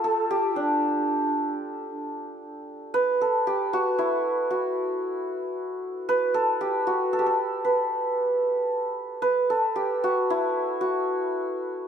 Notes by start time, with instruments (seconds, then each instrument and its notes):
Already playing: santur F4 G4
0.04 ney A4, santur A4
0.30 ney G4, santur G4
0.56 santur D4, ney D4
2.94 santur B4
3.21 santur A4
3.47 santur G4
3.73 santur F#4
3.98 santur E4
4.50 santur F#4
6.09 santur B4
6.34 santur A4
6.61 santur G4
6.87 santur F#4
7.13 santur A4
7.19 santur G4
7.26 santur A4
7.65 santur B4
9.22 santur B4
9.50 santur A4
9.76 santur G4
10.04 santur F#4
10.30 santur E4
10.81 santur F#4